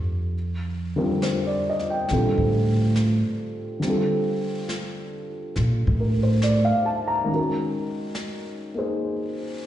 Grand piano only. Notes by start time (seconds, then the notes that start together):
Already playing: D3 G3 C4 F4 A4
0.96 D3 G3 C4 F4 A#4
1.23 C5
1.46 D5
1.69 D#5
1.90 G5
2.10 D3 G3 C4 F4 A4
3.80 D3 G3
3.85 C4 F4
3.89 A4
6.00 A#4
6.23 C5
6.43 D5
6.65 F5
6.86 A5
7.08 A#5
7.24 D#3 G#3
7.29 C#4 F#4
7.36 A#4
8.74 A#3 D#4 G#4
8.79 C5